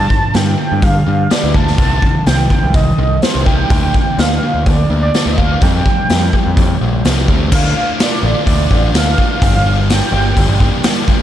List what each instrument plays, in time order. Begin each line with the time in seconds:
Already playing: analog synth lead A5
0.10 distorted electric guitar G2 D3, kick
0.34 distorted electric guitar G2 D3, picked electric bass G2, analog synth lead G5, snare, open hi-hat
0.58 distorted electric guitar G2 D3, analog synth lead G5
0.72 picked electric bass G2
0.82 distorted electric guitar G2 D3, analog synth lead F5, kick, open hi-hat
1.06 distorted electric guitar G2 D3, picked electric bass G2
1.30 distorted electric guitar G2 D3 G3, analog synth lead D5, snare, open hi-hat
1.44 picked electric bass D2
1.54 distorted electric guitar G2 D3 G3, analog synth lead A5, kick
1.67 snare
1.78 picked electric bass C2, distorted electric guitar C3 D#3 G3, kick, open hi-hat
2.02 distorted electric guitar C3 D#3, kick
2.26 picked electric bass C2, distorted electric guitar C3 D#3, analog synth lead G5, snare, open hi-hat
2.50 distorted electric guitar C3 D#3, analog synth lead G5, kick
2.63 picked electric bass C2
2.74 distorted electric guitar C3 D#3, analog synth lead D#5, kick, open hi-hat
2.98 picked electric bass C2, distorted electric guitar C3 D#3
3.22 distorted electric guitar C3 D#3 G3, analog synth lead C5, snare, open hi-hat
3.35 picked electric bass C2
3.46 distorted electric guitar C3 D#3 G3, analog synth lead G5, kick
3.70 picked electric bass D2, distorted electric guitar D3 A#3 D4, kick, open hi-hat
3.94 distorted electric guitar D3 A#3, kick
4.18 picked electric bass D2, distorted electric guitar D3 A#3, analog synth lead F5, snare, open hi-hat
4.43 distorted electric guitar D3 A#3
4.54 picked electric bass D2
4.66 distorted electric guitar D3 A#3, analog synth lead D5, kick, open hi-hat
4.90 picked electric bass D2, distorted electric guitar D3 A#3
5.02 analog synth lead D5
5.14 distorted electric guitar D3 A#3 D4, snare, open hi-hat
5.26 picked electric bass D2
5.32 analog synth lead D#5
5.37 distorted electric guitar D3 A#3 D4, analog synth lead F5, kick
5.61 picked electric bass F2, distorted electric guitar F3 G3 C4, analog synth lead G5, kick, open hi-hat
5.86 distorted electric guitar F3 G3, kick
6.10 picked electric bass F2, distorted electric guitar F3 G3, snare, open hi-hat
6.33 distorted electric guitar F3 G3, kick
6.46 picked electric bass F2
6.57 distorted electric guitar F3 G3, kick, open hi-hat
6.81 picked electric bass A#1, distorted electric guitar F3 G3
7.05 picked electric bass C2, distorted electric guitar F3 G3 C4, snare, open hi-hat
7.28 picked electric bass D2, distorted electric guitar F3 G3 C4, kick
7.52 picked electric bass D2, distorted electric guitar D3 A3 D4 F4, analog synth lead F5, kick, crash
7.65 snare
7.76 distorted electric guitar A3 D4 F4
8.00 distorted electric guitar D3 A3 D4 F4, analog synth lead D5, snare, open hi-hat
8.23 picked electric bass A1, distorted electric guitar D3 A3 D4 F4, analog synth lead D5
8.47 picked electric bass D2, distorted electric guitar D3 A3 D4 F4, kick, open hi-hat
8.71 picked electric bass A1, distorted electric guitar A3 D4 F4, kick
8.94 picked electric bass D2, distorted electric guitar D3 A3 D4 F4, analog synth lead F5, snare, open hi-hat
9.18 distorted electric guitar A3 D4 F4, kick
9.42 picked electric bass G1, distorted electric guitar G2 D3 G3 A#3 D4 G4, analog synth lead F5, kick, open hi-hat
9.66 distorted electric guitar G3 A#3 D4 G4
9.90 distorted electric guitar G3 A#3 D4 G4, analog synth lead G5, snare, open hi-hat
10.12 picked electric bass G1, distorted electric guitar G2 D3 G3 A#3 D4 G4
10.37 picked electric bass G1, distorted electric guitar G3 A#3 D4 G4, kick, open hi-hat
10.48 picked electric bass G1
10.60 distorted electric guitar G3 A#3 D4 G4, kick
10.84 distorted electric guitar G2 D3 G3 A#3 D4 G4, snare, open hi-hat
11.08 distorted electric guitar G3 A#3 D4 G4, kick